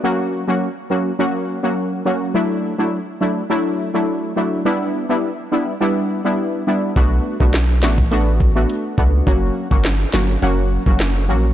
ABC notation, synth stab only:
X:1
M:4/4
L:1/16
Q:1/4=104
K:F#phr
V:1 name="Synth stab"
[F,^A,CF]3 [F,A,CF] z2 [F,A,CF] z [F,A,CF]3 [F,A,CF]3 [F,A,CF]2 | [F,A,DE]3 [F,A,DE] z2 [F,A,DE] z [F,A,DE]3 [F,A,DE]3 [F,A,DE]2 | [G,B,DE]3 [G,B,DE] z2 [G,B,DE] z [G,B,DE]3 [G,B,DE]3 [G,B,DE]2 | [A,B,DF]3 [A,B,DF] z2 [A,B,DF] z [A,B,DF]3 [A,B,DF]3 [A,B,DF]2 |
[F,^A,CF]3 [F,A,CF] z2 [F,A,CF] z [F,A,CF]3 [F,A,CF]3 [F,A,CF]2 |]